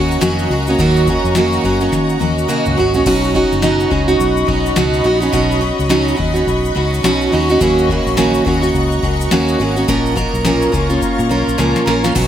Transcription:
Already playing: D#2 F#3 A#3 C#4 F#4 D#5 A#5 C#6
0.11 shaker
0.21 F2 D#3 F#3 A#3 C#4 F#4, snare, shaker
0.39 shaker
0.50 C#2 F#3 A#3 C#4 F#4
0.67 A#3 C#4 F#4, shaker
0.79 D#2 D#3 F#3 A#3 C#4 F#4, kick, shaker
0.97 shaker
1.07 F#3 A#3 C#4 F#4, kick, shaker
1.24 F2, shaker
1.35 D#3 F#3 A#3 C#4 F#4, snare, shaker
1.52 shaker
1.64 F#2 F#3 A#3 C#4 F#4, kick, shaker
1.80 A#3 C#4 F#4, shaker
1.92 D#3, kick, snare, shaker
2.09 shaker
2.19 D#2 F#3 A#3 C#4 F#4, high tom, shaker
2.38 shaker
2.48 D#3 F#3 A#3 C#4 F#4, mid tom, shaker
2.66 C#2, mid tom, shaker
2.77 G#1 F#3 A#3 C#4 F#4, floor tom
2.94 A#1 A#3 C#4 F#4, floor tom, shaker
3.06 B1 B2 F#3 C#4 D#4 F#4 B5 C#6, kick, crash
3.24 shaker
3.34 F#3 C#4 D#4 F#4, kick
3.52 F#1, shaker
3.62 B2 F#3 C#4 D#4 F#4, snare, shaker
3.80 shaker
3.90 C#2 F#3 C#4 D#4 F#4, kick
4.08 C#4 D#4 F#4, shaker
4.20 B1, kick, shaker
4.37 shaker
4.47 B1 F#3 C#4 D#4 F#4, kick
4.66 shaker
4.76 C#2 B2 F#3 C#4 D#4 F#4, snare, shaker
4.93 shaker
5.04 A#1 F#3 C#4 D#4 F#4
5.20 C#4 D#4 F#4, shaker
5.33 B1 B2 F#3 C#4 D#4 F#4, kick, shaker
5.51 shaker
5.61 F#3 C#4 D#4 F#4
5.79 C#2, shaker
5.89 B2 F#3 C#4 D#4 F#4, snare, shaker
6.08 shaker
6.17 D#2 F#3 C#4 D#4 F#4, kick
6.34 C#4 D#4 F#4, shaker
6.47 B1, kick, shaker
6.65 shaker
6.75 C#2 F#3 C#4 D#4 F#4
6.94 shaker
7.03 B1 B2 F#3 C#4 D#4 F#4, snare, shaker
7.21 shaker
7.32 D#2 F#3 C#4 D#4 F#4
7.49 C#4 D#4 F#4, shaker
7.59 D#2 D#3 F#3 A#3 C#4 F#4 A#5, kick, shaker
7.78 shaker
7.89 F#3 A#3 C#4 F#4, kick
8.07 A#1, shaker
8.17 D#3 F#3 A#3 C#4 F#4, snare, shaker
8.34 shaker
8.45 D#2 F#3 A#3 C#4 F#4, kick
8.62 A#3 C#4 F#4, shaker
8.75 C#2, kick, shaker
8.92 shaker
9.02 C#2 F#3 A#3 C#4 F#4, kick
9.21 shaker
9.31 D#2 D#3 F#3 A#3 C#4 F#4, snare, shaker
9.48 shaker
9.60 G#1 F#3 A#3 C#4 F#4
9.76 A#3 C#4 F#4, shaker
9.88 A#1 A#2 F3 A#3 C#4 F4 A#4 C#5, kick, shaker
10.06 shaker
10.16 A#3 C#4 F4 A#4, kick, shaker
10.34 B1, shaker
10.45 A#2 F3 A#3 C#4 F4 A#4, snare, shaker
10.62 shaker
10.72 C#2 A#3 C#4 F4 A#4, kick, shaker
10.89 A#3 C#4 F4 A#4, shaker
11.02 kick, shaker
11.19 A#2, shaker
11.29 B1 A#3 C#4 F4 A#4, shaker
11.47 A#1, shaker
11.58 C#2 A#2 F3 A#3 C#4 F4 A#4, snare, shaker
11.76 snare, shaker
11.86 A#1 A#3 C#4 F4 A#4, snare
12.04 A#3 C#4 F4 A#4, snare, shaker
12.15 B1 B2 D#3 F#3 B3 C#4 F#4 D#5 B5 C#6, kick, crash, shaker

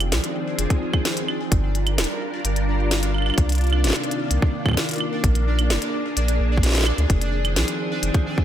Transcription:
Already playing: F1 D#3 F3 C4 D4 G#4 D5
0.00 closed hi-hat, claves
0.12 C2, snare, closed hi-hat
0.24 closed hi-hat
0.59 F1, closed hi-hat
0.70 kick, closed hi-hat
0.94 kick, claves
1.05 snare, closed hi-hat
1.17 closed hi-hat
1.28 claves
1.51 G1 G3 D4 F4 A#4, kick, closed hi-hat
1.75 closed hi-hat
1.87 closed hi-hat, claves
1.98 D1, snare, closed hi-hat
2.04 closed hi-hat
2.45 G1, closed hi-hat
2.56 closed hi-hat
2.91 snare, closed hi-hat
3.03 closed hi-hat
3.14 claves
3.18 claves
3.22 claves
3.26 claves
3.30 claves
3.34 C2 C3 D#3 A#3, kick, closed hi-hat, claves
3.49 closed hi-hat
3.52 closed hi-hat
3.55 closed hi-hat
3.58 closed hi-hat
3.61 closed hi-hat
3.64 closed hi-hat
3.67 closed hi-hat
3.70 closed hi-hat, claves
3.84 G1, snare, closed hi-hat
3.87 snare
3.90 snare
3.93 snare, closed hi-hat
4.04 closed hi-hat
4.11 closed hi-hat
4.31 C2, closed hi-hat
4.42 kick
4.66 kick, claves
4.69 kick, claves
4.71 kick, claves
4.74 kick, snare, closed hi-hat
4.89 closed hi-hat
4.91 closed hi-hat
4.93 closed hi-hat
4.96 closed hi-hat
4.98 closed hi-hat, claves
5.24 A#1 D4 G#4, kick, closed hi-hat
5.35 closed hi-hat
5.59 closed hi-hat, claves
5.70 F1, snare, closed hi-hat
5.82 closed hi-hat
6.17 A#1, closed hi-hat
6.28 closed hi-hat
6.40 A#1
6.57 kick
6.63 snare, closed hi-hat
6.66 snare
6.69 snare
6.72 snare
6.75 snare, closed hi-hat
6.78 snare
6.81 snare
6.84 snare, claves
6.98 D2, closed hi-hat
7.10 F1 D#3 F3 C4, kick, closed hi-hat
7.21 closed hi-hat
7.45 closed hi-hat, claves
7.56 C2, snare, closed hi-hat
7.68 closed hi-hat
8.03 F1, closed hi-hat
8.14 kick, closed hi-hat
8.38 kick

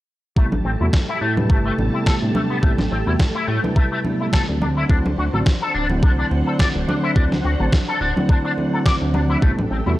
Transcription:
0.36 A1 C3 G3 A3 B3 E4 G4 A5, kick
0.52 A1, high conga
0.65 A1 C4
0.81 E2 C3 G3 A3 B3 E4 F#4
0.93 kick, snare, high conga
1.09 E4
1.21 A2 A3
1.37 C3 G3 A3 E4 B4, high conga
1.50 G1 A3, kick
1.65 A3
1.78 A1 C3 G3 A3 B3 E4, high conga
1.94 E4
2.06 A4, kick, snare
2.22 A2 C3 G3 A3 B3 D4
2.34 A3, high conga
2.50 B3
2.62 A1 C3 G3 A3 B3 E4, kick
2.78 A1, snare, high conga
2.91 A1 C4
3.06 E2 C3 G3 A3 B3 E4 F#4
3.19 kick, snare, high conga
3.35 E4
3.47 A2 A3
3.63 C3 G3 A3 E4 B4, high conga
3.76 A3, kick
3.92 A3
4.04 C3 G3 A3 B3 E4, high conga
4.20 E4
4.33 A4, kick, snare
4.48 D2 D3 F#3 A3 C4 D4
4.61 D4 C5 F#5, high conga
4.77 E4
4.89 D2 D3 F#3 A3 C4 D4 E4, kick
5.06 D2, high conga
5.18 D2 F#4
5.33 A1 D3 F#3 A3 C4 F#4 A4
5.46 kick, snare, high conga
5.62 A4
5.74 D1 D4
5.90 D3 F#3 A3 C4 E4, high conga
6.03 C2 D4, kick
6.19 D4
6.31 D2 D3 F#3 A3 C4 E4, high conga
6.47 A4
6.59 D5, kick, snare
6.75 D1 D3 F#3 A3 C4 D4
6.87 D4, high conga
7.03 E4
7.16 D2 D3 F#3 A3 C4 D4 E4, kick
7.32 D2, snare, high conga
7.44 D2 F#4
7.60 A1 D3 F#3 A3 C4 F#4 A4
7.72 kick, snare, high conga
7.88 A4
8.01 D1 D4
8.16 D3 F#3 A3 C4 E4, high conga
8.29 D4, kick
8.45 D4
8.57 D3 F#3 A3 C4 E4, high conga
8.73 A4
8.86 D5, kick, snare
9.01 D2 D3 F#3 A3 C4 D4
9.14 D4, high conga
9.30 E4
9.42 A1 C3 G3 A3 B3 E4 G4 A5, kick
9.58 A1, high conga
9.71 A1 C4
9.86 E2 C3 G3 A3 B3 E4 F#4

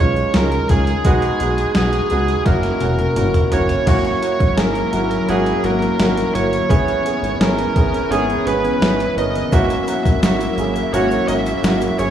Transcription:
0.00 B1 G#3 C#4 D#4 F4 C#5
0.16 closed hi-hat
0.34 C#2 G#3 C#4 D#4 F4 A#4, snare, closed hi-hat
0.52 closed hi-hat
0.69 C#2 G#3 C#4 D#4 F4 G#4, kick, closed hi-hat
0.87 closed hi-hat
1.05 B1 G#3 B3 D#4 F#4, kick, closed hi-hat
1.22 closed hi-hat
1.40 B1 G#3 B3 D#4 F#4, closed hi-hat
1.58 closed hi-hat
1.75 B1 G#3 B3 D#4 F#4 G#4, snare, closed hi-hat
1.93 closed hi-hat
2.10 C#2 G#3 B3 D#4 F#4, closed hi-hat
2.28 closed hi-hat
2.45 F#1 A#3 C#4 E4 F#4 A#4, kick, snare, closed hi-hat
2.63 snare, closed hi-hat
2.80 E1 A#3 C#4 E4 F#4, closed hi-hat, high tom
2.99 closed hi-hat, high tom
3.16 F#1 A#3 C#4 E4 F#4, closed hi-hat, mid tom
3.34 closed hi-hat, mid tom
3.51 F#1 A#3 C#4 E4 F#4 C#5, closed hi-hat, floor tom
3.69 closed hi-hat, floor tom
3.86 G#1 F#3 A#3 C#4 E4 F#4 C#5, kick, closed hi-hat, crash
4.05 closed hi-hat
4.21 A#3 C#4 E4 F#4, closed hi-hat
4.40 G#1, kick, closed hi-hat
4.56 G#1 A#3 C#4 E4 G#4 A#4, snare, closed hi-hat
4.75 closed hi-hat
4.92 G#1 A#3 C#4 E4 F#4, closed hi-hat
5.11 closed hi-hat
5.28 G#1 A#3 C#4 E4 F#4 G#4, closed hi-hat
5.46 closed hi-hat
5.63 G#1 A#3 C#4 E4 F#4 A#4, closed hi-hat
5.82 closed hi-hat
5.99 G#1 A#3 C#4 E4 F#4, snare, closed hi-hat
6.17 closed hi-hat
6.34 G1 A#3 C#4 E4 F#4 C#5, closed hi-hat
6.53 closed hi-hat
6.69 G#1 E3 B3 C#4 E4 G#4 C#5, kick, closed hi-hat
6.88 closed hi-hat
7.04 B3 C#4 E4 G#4, closed hi-hat
7.22 G#1, closed hi-hat
7.40 G#1 B3 C#4 E4 G#4 A#4, snare, closed hi-hat
7.58 closed hi-hat
7.75 G#1 B3 C#4 E4 G#4, kick, closed hi-hat
7.94 closed hi-hat
8.10 G#1 B3 C#4 E4 G#4, closed hi-hat
8.30 closed hi-hat
8.46 G#1 B3 C#4 E4 G#4 B4, closed hi-hat
8.65 closed hi-hat
8.82 G#1 B3 C#4 E4 G#4, snare, closed hi-hat
9.00 closed hi-hat
9.17 G1 B3 C#4 E4 A#4 D#5, closed hi-hat
9.35 closed hi-hat
9.51 G#1 F#3 A#3 C#4 E4 F#4 E5, kick, closed hi-hat, shaker
9.70 closed hi-hat, shaker
9.87 A#3 C#4 E4 F#4, closed hi-hat, shaker
10.05 G#1, kick, closed hi-hat, shaker
10.23 G#1 A#3 C#4 E4 F#4 E5, snare, closed hi-hat, shaker
10.40 closed hi-hat, shaker
10.57 G#1 A#3 C#4 E4 G#4, closed hi-hat, shaker
10.76 closed hi-hat, shaker
10.93 G#1 A#3 C#4 E4 F#4 C#5, closed hi-hat, shaker
11.11 closed hi-hat, shaker
11.28 G#1 A#3 C#4 E4 F#4 E5, closed hi-hat, shaker
11.46 closed hi-hat, shaker
11.63 G#1 A#3 C#4 E4 F#4, snare, closed hi-hat, shaker
11.81 closed hi-hat, shaker
11.99 G1 A#3 C#4 E4 G#4 C#5, closed hi-hat, shaker

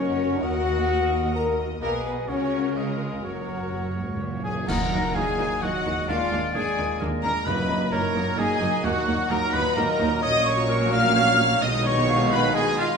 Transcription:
Already playing: F#1 F#2 C#4 F#4 A#4 C#5 F#5
0.42 D#2 F#4 D#5 F#5
1.35 A#4 A#5
1.82 B1 B2 A#3 G#4 A#4 B4 D#5 G#5
2.06 B3 B4
2.29 C#2 C#3 C#4 F#4 A#4 C#5 F#5
2.76 G#3 F4 G#4 A#4 D#5 F5
3.24 F#1 F#2 F#3 F#4 A#4 C#5 F#5
3.31 F#2
3.40 F#2
3.47 F#2
3.55 F#2
3.62 F#2
3.70 F#2
3.78 F#2
3.85 F#2
3.93 F#2 G#2
4.01 F#2
4.08 F#2
4.16 F#2 A#2
4.24 F#2
4.32 F#2
4.39 F#2
4.43 F#2 G#4 G#5
4.55 F#2
4.67 D#2 A#2 D#3 F#3 D#4 A#4 F#5 A#5, concert bass drum, crash
4.91 D#2 D#3 F#3 D#4
5.15 D#2 D#3 F#3 D#4 G#4 F5 G#5
5.39 D#2 D#3 F#3 D#4
5.62 D#2 A#2 D#3 F#3 D#4 F#4 D#5 F#5
5.85 D#2 D#3 F#3 G#3 D#4
6.08 D#2 A#2 D#3 G#3 A#3 D4 F4 D5 F5
6.31 D#2 D#3 A#3 D4
6.54 D#2 A#2 D#3 G#3 A#3 D4 G#4 G#5
6.78 D#2 D#3 A#3 D4
7.00 D#2 D#3 A#3 D4 A#4
7.22 D#2 D#3 A#3 D4 A#4 A#5
7.46 F#1 F#2 A#2 F#3 A#3 D#4 B4 D#5 B5
7.69 F#1 F#2 A#3 D#4
7.92 F#1 F#2 A#2 F#3 A#3 D#4 A#4 C#5 A#5
8.15 F#1 F#2 A#3 D#4
8.38 F#1 F#2 A#3 D#4 G#4 D#5 G#5
8.61 F#1 F#2 A#3 D#4
8.84 D#2 A#2 F#3 A#3 D#4 F#4 F#5
9.07 D#2 A#3 D#4
9.30 D#2 A#2 F#3 A#3 D#4 A#4 A#5
9.53 D#2 A#3 D#4 B4 B5
9.75 D#2 A#2 F#3 A#3 D#4 A#4 D#5 A#5
10.00 D#2 A#3 D#4
10.22 A#1 A#2 F#3 A#3 C#4 F#4 C#5 D#5 D#6
10.46 C#5 C#6
10.69 A#4
10.92 F5 F6
11.16 C#5
11.62 B1 B2 D#3 G#3 B3 D#4 D#5 D#6
11.85 C#5 C#6
12.09 F5
12.32 B4 B5
12.54 G#4 D#5 G#5
12.77 F4 F5

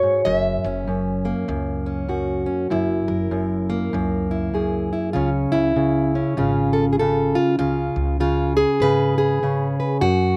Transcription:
Already playing: F#4 C#5
0.03 G#2
0.25 F#1 F#2 E5
0.64 F#1 C#4
0.88 F#2
1.25 A#3
1.48 C#2 F#2
1.86 C#4
2.09 F#2 F#4
2.46 C#4
2.70 F#1 F#2 E4
3.08 F#1 A#4
3.31 F#2
3.70 A#3
3.93 C#2 F#2
4.31 E4
4.54 F#2 G#4
4.93 E4
5.13 C#2 C#3 C#4 F4
5.52 C#2 E4
5.76 C#3
6.15 C#4
6.37 G#1 C#3 F4
6.73 A4
6.93 G#4
6.99 C#3 A4
7.35 F4
7.59 C#2 C#3 F4
7.96 C#2
8.20 C#3 F4
8.57 G#4
8.80 G#1 C#3 B4
9.18 G#4
9.43 C#3 C#4
9.80 B4
10.01 F#2 F#4

